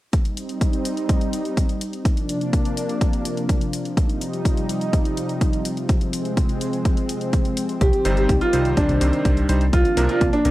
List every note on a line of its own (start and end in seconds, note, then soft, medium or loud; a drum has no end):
0.13 2.03 G3 medium
0.13 2.03 C4 medium
0.13 2.03 D#4 medium
0.13 kick loud
0.13 closed hi-hat medium
0.25 closed hi-hat soft
0.37 closed hi-hat medium
0.49 closed hi-hat soft
0.61 kick loud
0.61 closed hi-hat medium
0.73 closed hi-hat soft
0.85 closed hi-hat medium
0.97 closed hi-hat soft
1.09 kick loud
1.09 closed hi-hat medium
1.21 closed hi-hat soft
1.33 closed hi-hat medium
1.45 closed hi-hat soft
1.57 kick loud
1.57 closed hi-hat medium
1.69 closed hi-hat soft
1.81 closed hi-hat medium
1.93 closed hi-hat soft
2.05 3.95 C3 medium
2.05 7.77 F3 medium
2.05 3.95 A#3 medium
2.05 3.95 D4 medium
2.05 kick loud
2.05 closed hi-hat medium
2.17 closed hi-hat soft
2.29 closed hi-hat medium
2.41 closed hi-hat soft
2.53 kick loud
2.53 closed hi-hat medium
2.65 closed hi-hat soft
2.77 closed hi-hat medium
2.89 closed hi-hat soft
3.01 kick loud
3.01 closed hi-hat medium
3.13 closed hi-hat soft
3.25 closed hi-hat medium
3.37 closed hi-hat soft
3.49 kick loud
3.49 closed hi-hat medium
3.61 closed hi-hat soft
3.73 closed hi-hat medium
3.85 closed hi-hat soft
3.97 7.77 C3 medium
3.97 5.87 G3 medium
3.97 5.87 D#4 medium
3.97 kick loud
3.97 closed hi-hat medium
4.09 closed hi-hat soft
4.21 closed hi-hat medium
4.33 closed hi-hat soft
4.45 kick loud
4.45 closed hi-hat medium
4.57 closed hi-hat soft
4.69 closed hi-hat medium
4.81 closed hi-hat soft
4.93 kick loud
4.93 closed hi-hat medium
5.05 closed hi-hat soft
5.17 closed hi-hat medium
5.29 closed hi-hat soft
5.41 kick loud
5.41 closed hi-hat medium
5.53 closed hi-hat soft
5.65 closed hi-hat medium
5.77 closed hi-hat soft
5.89 7.79 G#3 medium
5.89 9.70 C4 medium
5.89 kick loud
5.89 closed hi-hat medium
6.01 closed hi-hat soft
6.13 closed hi-hat medium
6.25 closed hi-hat soft
6.37 kick loud
6.37 closed hi-hat medium
6.49 closed hi-hat soft
6.61 closed hi-hat medium
6.73 closed hi-hat soft
6.85 kick loud
6.85 closed hi-hat medium
6.97 closed hi-hat soft
7.09 closed hi-hat medium
7.21 closed hi-hat soft
7.33 kick loud
7.33 closed hi-hat medium
7.45 closed hi-hat soft
7.57 closed hi-hat medium
7.69 closed hi-hat soft
7.81 7.92 C2 loud
7.81 9.71 D#3 medium
7.81 9.71 G3 medium
7.81 8.05 G4 medium
7.81 kick loud
7.81 closed hi-hat medium
7.93 closed hi-hat soft
8.05 8.26 G1 loud
8.05 8.27 C3 medium
8.05 8.27 G3 medium
8.05 8.27 C4 medium
8.05 8.27 D#4 medium
8.05 8.27 C5 medium
8.05 closed hi-hat medium
8.17 8.33 G4 medium
8.17 closed hi-hat soft
8.29 8.40 C2 loud
8.29 kick loud
8.29 closed hi-hat medium
8.41 8.65 F4 medium
8.41 closed hi-hat soft
8.53 8.74 C2 medium
8.53 8.98 C3 medium
8.53 8.98 G3 medium
8.53 8.98 C4 medium
8.53 8.98 D#4 medium
8.53 8.98 C5 medium
8.53 closed hi-hat medium
8.65 closed hi-hat soft
8.77 8.88 C2 medium
8.77 9.64 D4 medium
8.77 kick loud
8.77 closed hi-hat medium
8.89 9.00 C2 medium
8.89 closed hi-hat soft
9.01 9.12 C2 medium
9.01 9.46 C3 medium
9.01 9.46 D#3 medium
9.01 9.46 G3 medium
9.01 9.46 C4 medium
9.01 9.46 C5 medium
9.01 closed hi-hat medium
9.13 closed hi-hat soft
9.25 9.46 C2 medium
9.25 kick loud
9.25 closed hi-hat medium
9.37 closed hi-hat soft
9.49 9.70 C2 medium
9.49 9.63 G3 medium
9.49 9.63 C4 medium
9.49 9.63 D#4 medium
9.49 9.63 C5 medium
9.49 closed hi-hat medium
9.61 closed hi-hat soft
9.73 9.84 C2 loud
9.73 10.51 F3 medium
9.73 10.51 A#3 medium
9.73 10.51 D4 medium
9.73 9.97 F4 medium
9.73 kick loud
9.73 closed hi-hat medium
9.85 closed hi-hat soft
9.97 10.08 C2 loud
9.97 10.19 C3 medium
9.97 10.19 F3 medium
9.97 10.19 A#3 medium
9.97 10.19 D4 medium
9.97 10.19 A#4 medium
9.97 closed hi-hat medium
10.09 10.25 F4 medium
10.09 closed hi-hat soft
10.21 10.32 C2 medium
10.21 kick loud
10.21 closed hi-hat medium
10.33 10.51 D4 loud
10.33 closed hi-hat soft
10.45 10.51 C2 medium
10.45 10.51 C3 medium
10.45 10.51 F3 medium
10.45 10.51 A#3 medium
10.45 10.51 D4 medium
10.45 10.51 A#4 medium
10.45 closed hi-hat medium